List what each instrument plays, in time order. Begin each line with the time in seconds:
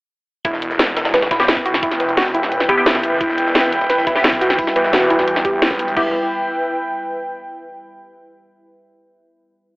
0.45 detuned saw bass E1, analog synth pad E4, synth pluck E4, kick, closed hi-hat
0.53 snare
0.62 closed hi-hat, shaker
0.71 snare, shaker
0.77 analog synth pad B4, snare, closed hi-hat
0.88 shaker
0.97 snare, closed hi-hat, shaker
1.05 snare, closed hi-hat
1.13 synth pluck B4, analog synth pad G5, snare, closed hi-hat
1.22 snare, closed hi-hat
1.31 detuned saw bass B1, synth pluck E4, kick, snare, closed hi-hat, shaker
1.40 synth stab B3 E4 G4, snare, closed hi-hat
1.48 synth pluck E4, snare, closed hi-hat
1.57 kick, shaker
1.66 synth pluck F#4, closed hi-hat, open hi-hat, shaker
1.74 snare
1.83 detuned saw bass E1, synth pluck E4, kick, closed hi-hat
1.91 snare, closed hi-hat
2.00 synth pluck B4, snare, closed hi-hat, shaker
2.09 closed hi-hat, shaker
2.17 synth pluck F#4, snare, closed hi-hat
2.26 snare, shaker
2.34 synth pluck E4, closed hi-hat, shaker
2.43 detuned saw bass D#1, snare, closed hi-hat
2.52 closed hi-hat
2.60 snare
2.69 detuned saw bass D2, synth stab B3 E4 G4, synth pluck G4, kick, closed hi-hat, shaker
2.78 synth stab B3 E4 G4
2.86 synth pluck E4, snare, closed hi-hat
2.95 kick, snare, closed hi-hat, shaker
3.03 detuned saw bass F#1, closed hi-hat, open hi-hat, shaker
3.21 detuned saw bass E1, ambient pad G3 E4 B4, synth pluck E4, kick, closed hi-hat
3.29 snare
3.38 closed hi-hat, shaker
3.47 snare, shaker
3.55 snare, closed hi-hat
3.64 shaker
3.72 closed hi-hat, shaker
3.81 closed hi-hat
3.90 synth pluck B4, snare, closed hi-hat
3.98 snare
4.07 detuned saw bass B1, synth pluck E4, kick, closed hi-hat, shaker
4.16 synth stab B3 E4 G4, snare
4.24 synth pluck E4, snare, closed hi-hat
4.33 kick, shaker
4.41 synth pluck F#4, closed hi-hat, open hi-hat, shaker
4.50 snare
4.59 synth pluck E4, kick, closed hi-hat, open hi-hat
4.67 snare
4.76 detuned saw bass E2, synth pluck B4, closed hi-hat, shaker
4.84 snare, shaker
4.93 synth pluck F#4, snare, closed hi-hat
5.02 shaker
5.10 synth pluck E4, closed hi-hat, shaker
5.19 snare, closed hi-hat
5.28 closed hi-hat
5.36 snare
5.45 synth pluck G4, kick, closed hi-hat, shaker
5.62 detuned saw bass E1, synth pluck E4, snare, closed hi-hat
5.71 kick, snare, shaker
5.79 closed hi-hat, open hi-hat, shaker
5.88 closed hi-hat
5.97 detuned saw bass E1, synth stab B3 E4 G4, synth pluck E4, analog synth pad E4, kick, crash
6.02 analog synth pad B4
6.07 analog synth pad G5